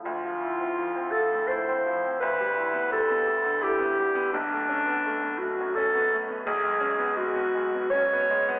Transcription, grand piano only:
0.05 2.19 D2 medium
0.25 0.53 F3 medium
0.42 0.71 E4 medium
0.60 0.88 C4 medium
0.79 1.07 F3 medium
0.96 1.24 C4 medium
1.14 1.43 F3 medium
1.33 1.61 A2 medium
1.51 1.79 E4 medium
1.68 1.97 C4 medium
1.86 2.15 F3 medium
2.04 2.22 C4 medium
2.22 4.30 D2 medium
2.40 2.68 G3 medium
2.57 2.85 E4 medium
2.74 3.02 B3 medium
2.92 3.20 G3 medium
3.10 3.38 B3 medium
3.27 3.55 G3 medium
3.44 3.73 D3 medium
3.61 3.90 E4 medium
3.79 4.08 B3 medium
3.98 4.27 G3 medium
4.15 4.33 B3 medium
4.34 6.43 B1 medium
4.52 4.81 A3 medium
4.69 4.98 C#4 medium
4.86 5.16 B3 medium
5.06 5.34 A3 medium
5.23 5.52 B3 medium
5.43 5.71 A3 medium
5.60 5.88 F#2 medium
5.77 6.05 C#4 medium
5.95 6.23 B3 medium
6.12 6.40 A3 medium
6.28 6.46 B3 medium
6.47 8.59 B1 medium
6.64 6.93 G#3 medium
6.80 7.10 C#4 medium
6.99 7.28 B3 medium
7.17 7.47 G#3 medium
7.35 7.66 B3 medium
7.55 7.86 G#3 medium
7.75 8.05 B2 medium
7.93 8.23 C#4 medium
8.13 8.41 B3 medium
8.30 8.58 G#3 medium
8.49 8.59 B3 medium

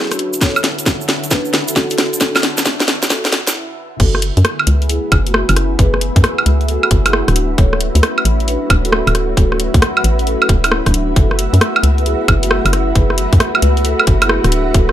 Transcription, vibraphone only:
0.11 0.34 D4 medium
0.11 0.34 F#4 medium
0.41 0.59 A4 medium
0.41 0.59 C#5 loud
1.31 1.53 D4 medium
1.31 1.53 B4 medium
1.68 1.81 F#4 medium
1.68 1.81 A4 medium
1.90 2.13 F#4 medium
1.90 2.13 A4 medium
2.20 2.38 F#4 medium
2.20 2.38 A4 loud
3.10 3.32 F#4 medium
3.10 3.32 A4 medium
3.47 3.55 C#4 medium
3.47 3.55 E4 medium
4.00 4.17 F#4 medium
4.00 4.17 A4 loud
4.89 5.12 E4 medium
4.89 5.12 G#4 loud
5.26 5.39 A3 medium
5.26 5.39 F#4 medium
5.49 5.71 C#4 medium
5.49 5.71 E4 medium
5.79 5.96 G#4 medium
5.79 5.96 B4 loud
6.68 6.91 F#4 medium
6.68 6.91 A4 medium
7.05 7.18 E4 medium
7.05 7.18 G#4 medium
7.28 7.50 D4 medium
7.28 7.50 F#4 medium
7.58 7.75 A4 medium
7.58 7.75 C#5 loud
8.47 8.70 D4 medium
8.47 8.70 B4 medium
8.85 8.97 F#4 medium
8.85 8.97 A4 medium
9.07 9.29 F#4 medium
9.07 9.29 A4 medium
9.37 9.54 F#4 medium
9.37 9.54 A4 loud
10.27 10.49 F#4 medium
10.27 10.49 A4 medium
10.64 10.76 C#4 medium
10.64 10.76 E4 medium
10.86 11.08 F#3 medium
10.86 11.08 D4 medium
11.16 11.33 F#4 medium
11.16 11.33 A4 loud
12.06 12.28 E4 medium
12.06 12.28 G#4 medium
12.43 12.55 A3 medium
12.43 12.56 F#4 medium
12.65 12.88 C#4 medium
12.65 12.88 E4 medium
12.96 13.13 G#4 medium
12.96 13.13 B4 loud
13.85 14.07 F#4 medium
13.85 14.07 A4 loud
14.22 14.34 E4 medium
14.22 14.34 G#4 medium
14.45 14.67 D4 medium
14.45 14.67 F#4 medium
14.74 14.92 F#4 medium
14.74 14.92 A4 loud

